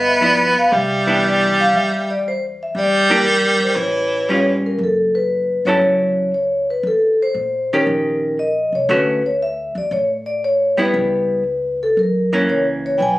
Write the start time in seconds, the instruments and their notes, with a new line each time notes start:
Already playing: upright bass G1, baritone saxophone B3
0.08 vibraphone E5
0.21 hollow-body jazz guitar F3 B3 E4, vibraphone D5
0.59 vibraphone F5
0.72 upright bass C2, baritone saxophone G3, vibraphone E5
1.07 hollow-body jazz guitar E3 B3 D4, vibraphone E5
1.25 vibraphone D5
1.60 vibraphone F5
1.73 upright bass E2, vibraphone E5
2.10 vibraphone D5
2.28 vibraphone C5
2.63 vibraphone E5
2.75 upright bass E2, baritone saxophone G3, vibraphone D5
3.10 hollow-body jazz guitar E3 A#3 D4 G4, vibraphone A#4
3.60 vibraphone C5, muted upright bass stroke
3.76 upright bass A1, baritone saxophone E3
3.81 vibraphone C#5
4.29 hollow-body jazz guitar G3 C#4 F4, vibraphone C#5
4.66 vibraphone A#4
4.78 upright bass F#1
4.84 vibraphone A4
5.15 vibraphone B4
5.65 upright bass G1, hollow-body jazz guitar F#3 C#4 E4 A4, vibraphone C#5
5.81 upright bass C#2
6.34 vibraphone C#5
6.70 vibraphone B4
6.83 upright bass D#2, vibraphone A4
7.22 vibraphone C5
7.34 upright bass A#2
7.73 hollow-body jazz guitar D#3 C#4 G4, vibraphone A#4
7.86 upright bass A#1
8.39 vibraphone D#5
8.72 upright bass C2, vibraphone C#5
8.89 upright bass D2, hollow-body jazz guitar D3 A3 C#4 F#4, vibraphone B4
9.26 vibraphone C#5
9.42 vibraphone E5
9.75 upright bass D#2, vibraphone D5
9.91 upright bass A2, vibraphone C#5
10.26 vibraphone D5
10.44 vibraphone C#5
10.77 hollow-body jazz guitar G3 B3 E4, vibraphone B4
10.94 upright bass C#2
11.83 vibraphone A4
11.97 upright bass F#2, vibraphone A#4
12.33 hollow-body jazz guitar E3 A#3 C#4
12.49 upright bass C#2, vibraphone C#5
12.86 vibraphone C#5
12.98 upright bass B1, baritone saxophone E3, vibraphone G5
13.02 vibraphone G#5